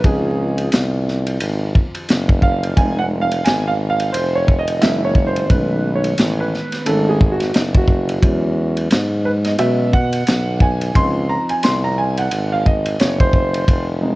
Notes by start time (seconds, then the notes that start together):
0.04 C#2 F3 C4 D#4 G#4, kick, ride
0.58 ride
0.72 C2, snare, hi-hat pedal, ride
1.08 snare
1.27 ride
1.40 G#1, ride
1.75 kick
1.95 ride
2.09 F#1, snare, hi-hat pedal, ride
2.29 kick
2.42 F5, kick
2.63 ride
2.76 F1 G#3 C4 D#4 G#5, kick, ride
2.99 F#5
3.21 F5
3.31 ride
3.44 G#1 G#5, snare, hi-hat pedal, ride
3.67 F5
3.90 F5
4.00 ride
4.12 F1 C5, ride
4.35 C#5
4.48 kick
4.59 D#5
4.68 ride
4.80 F#1 E3 G#3 A#3 D#4 E5, snare, hi-hat pedal, ride
5.05 C#5
5.15 kick
5.27 C5
5.36 ride
5.49 B1 D#3 G#3 A3 C#4 B4, kick, ride
5.95 C#5
6.04 ride
6.18 A1, snare, hi-hat pedal, ride
6.40 B4
6.54 snare
6.72 snare, ride
6.86 G#1 D#3 G#3 A3 C#4 A4, ride
7.09 G#4
7.21 kick
7.32 F#4
7.40 snare, ride
7.54 F#1 D#4, snare, hi-hat pedal, ride
7.75 F#4, kick
7.88 kick
8.09 ride
8.21 E2 F#3 G#3 C#4, kick, ride
8.77 ride
8.91 G#2, snare, hi-hat pedal, ride
9.25 B4
9.45 D#5, snare, ride
9.58 B2 F#3 G#3 C#4 E5, ride
9.93 F#5, kick
10.13 ride
10.27 B1, snare, hi-hat pedal, ride
10.60 G#5, kick
10.81 ride
10.94 C#2 F3 C4 D#4 C6, kick, ride
11.29 A#5
11.49 G#5, ride
11.63 C2 C6, snare, hi-hat pedal, ride
11.84 A#5
11.98 G#5
12.17 F#5, ride
12.31 G#1, ride
12.52 F5
12.66 D#5, kick
12.86 ride
13.00 F#1 C#5, snare, hi-hat pedal, ride
13.20 C5, kick
13.33 kick
13.54 ride
13.68 F1, kick, ride
14.01 C3 G#3 D#4